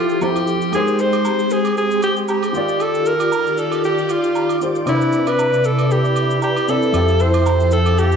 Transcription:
Already playing: F3 C4 E4 F4 G4 A4
0.10 shaker
0.21 F3 C4 E4 G4 C5, low woodblock, shaker
0.36 high agogo, shaker
0.47 shaker
0.62 shaker
0.72 G#3 C4 D#4 G4 G#4 A#4, high agogo, shaker
0.76 C5
0.88 shaker
0.99 C5, shaker
1.13 high agogo, shaker
1.25 low woodblock, shaker
1.39 shaker
1.50 G#4, shaker
1.65 high agogo, shaker
1.77 G#4, shaker
1.91 shaker
2.02 G4, high agogo, shaker
2.17 shaker
2.28 G4, low woodblock, shaker
2.43 high agogo, shaker
2.53 D#3 D#4 F4 G4 D5, shaker
2.57 D5
2.69 shaker
2.80 A4, high agogo, shaker
2.95 shaker
3.06 A#4, shaker
3.20 high agogo, shaker
3.32 low woodblock, shaker
3.47 shaker
3.58 A4, shaker
3.72 high agogo, shaker
3.84 G4, shaker
3.98 shaker
4.09 F4, high agogo, shaker
4.24 shaker
4.35 low woodblock, shaker
4.49 high agogo, shaker
4.61 D#3 D#4 F4 G4 C5, shaker
4.75 shaker
4.86 C3 C4 D4 E4 B4, high agogo, shaker
4.90 A4
4.96 B4
5.01 shaker
5.13 shaker
5.27 B4, high agogo, shaker
5.39 low woodblock, shaker
5.53 shaker
5.64 A4, shaker
5.79 high agogo, shaker
5.91 G4, shaker
6.05 shaker
6.16 high agogo, shaker
6.30 shaker
6.42 G4, low woodblock, shaker
6.56 high agogo, shaker
6.68 C3 C4 D4 E4 A4 D5, shaker
6.82 shaker
6.92 F2 F3 C4 E4 G4 A4, high agogo, shaker
6.97 A4
7.08 shaker
7.20 C5, shaker
7.34 high agogo, shaker
7.46 low woodblock, shaker
7.60 shaker
7.71 A4, shaker
7.86 high agogo, shaker
7.98 G4, shaker
8.12 shaker

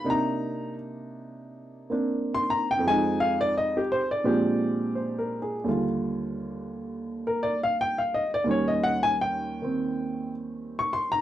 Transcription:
0.04 C3 A#3 D4 D#4
0.10 A#5
1.90 A#3 C4 D4
2.34 C6
2.50 A#5
2.71 G5
2.79 F2 F3
2.86 G#3 G#5
2.90 D#4
3.20 F5
3.41 D5
3.58 D#5
3.77 G4
3.92 C5
4.11 D5
4.24 A#2 F3 G#3 C4 D4 G4
4.95 C5
5.19 A#4
5.42 G#4
5.64 D#2 D3 G3
5.69 F4
7.27 A#4
7.43 D5
7.63 F5
7.81 G5
7.98 F5
8.14 D#5
8.34 D5
8.44 D#2 D#3 G3
8.49 C#4 C#5
8.68 D#5
8.84 F#5
9.03 G#5
9.21 G5
9.62 D#3 C4
10.79 C#6
10.93 C6
11.12 A#5

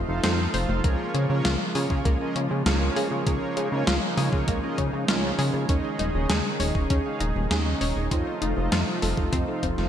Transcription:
Already playing: C3 F3 A3 D#4 F4
0.08 F1 D#4 F4 A4 C5 F5
0.23 F2 D#4 F4 A4 C5 F5, snare, closed hi-hat
0.54 F1 C5, open hi-hat
0.69 F1
0.84 C#2 C#3 G#3 A#3 C#4 F4 G#4 A#4 C#5, kick, closed hi-hat
1.14 C#3 C#4, closed hi-hat
1.30 C#3 C#4 F4 G#4 A#4 C#5
1.45 C#2 F4, snare, closed hi-hat
1.75 C#3 C#4 F4 G#4 A#4 C#5, open hi-hat
1.90 C#3, kick
2.05 C#2 A#3, kick, closed hi-hat
2.21 C#4 F4 G#4 A#4 D#5
2.36 C#3 C#4, closed hi-hat
2.51 C#3
2.66 C#2 C#4 F4 G#4 A#4 C#5, snare, closed hi-hat
2.96 C#3 G#4, open hi-hat
3.11 C#3
3.27 C#2 A#3 C#4 D#4 F4 G#4 A#4 C#5, kick, closed hi-hat
3.57 C#3 C#4, closed hi-hat
3.72 C#3 C#4 F4 G#4 A#4 C#5
3.87 C#2 F4, snare, closed hi-hat
4.17 C#3 C#4 F4 G#4 A#4 C#5, snare, open hi-hat
4.33 C#3, kick
4.48 C#2 A#3, kick, closed hi-hat
4.63 C#4 F4 G#4 A#4 D#5
4.78 C#3 C#4, kick, closed hi-hat
4.93 C#3
5.08 C#2 C#4 F4 G#4 A#4 C#5, snare, closed hi-hat
5.39 C#3 G#4, open hi-hat
5.54 C#3
5.69 D#2 D#3 C#4 D#4 G#4 C#5 D#5, kick, closed hi-hat
5.99 D#1 D#4, closed hi-hat
6.14 D#1 C#4 D#4 G#4 C#5 D#5
6.29 D#2 G#4, snare, closed hi-hat
6.60 D#1 C#4 D#4 G#4 C#5 D#5, open hi-hat
6.75 D#1, kick
6.90 D#2 C#4, kick, closed hi-hat
7.05 C#4 D#4 G#4 C#5 F5
7.20 D#1 D#4, closed hi-hat
7.36 D#1
7.51 D#2 C#4 D#4 G#4 C#5 D#5, snare, closed hi-hat
7.81 D#1 C#5, open hi-hat
7.96 D#1
8.11 F2 C3 F3 A3 C4 D#4 F4 A4 C5 D#5, kick, closed hi-hat
8.42 F1 D#4, closed hi-hat
8.57 F1 D#4 F4 A4 C5 D#5
8.72 F2 F4, snare, closed hi-hat
9.02 F1 D#4 F4 A4 C5 D#5, snare, open hi-hat
9.17 F1, kick
9.33 F2 C4, kick, closed hi-hat
9.48 D#4 F4 A4 C5 F5
9.63 F1 C4, kick, closed hi-hat
9.78 F1 D#4 F4 A4 C5 F5, snare

